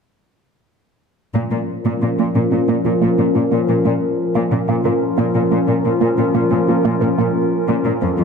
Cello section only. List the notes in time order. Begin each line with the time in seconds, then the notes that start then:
1.35 A#2
1.52 A#2
1.85 A#2
2.02 A#2
2.19 A#2
2.35 A#2
2.52 A#2
2.68 A#2
2.85 A#2
3.02 A#2
3.18 A#2
3.35 A#2
3.52 A#2
3.68 A#2
3.85 A#2
4.35 A#2
4.51 A#2
4.68 A#2
4.85 A#2
5.18 A#2
5.34 A#2
5.51 A#2
5.68 A#2
5.84 A#2
6.01 A#2
6.18 A#2
6.34 A#2
6.51 A#2
6.68 A#2
6.84 A#2
7.01 A#2
7.18 A#2
7.68 A#2
7.84 A#2
8.02 F2
8.18 F2